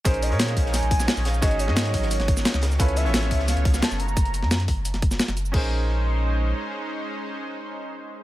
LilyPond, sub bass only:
\new Staff \with { instrumentName = "Sub bass" } { \clef bass \time 4/4 \key bes \minor \tempo 4 = 175 bes,,8. bes,8. bes,,8. bes,,8. r16 bes,,8. | aes,,8. aes,8. aes,,8. aes,,8. r16 des,8. | des,8. a,,8. des,8. des,8. r16 ges,,8. | ges,,8. ges,8. ges,,8. ges,,8. r16 ges,,8. |
bes,,2. r4 | r1 | }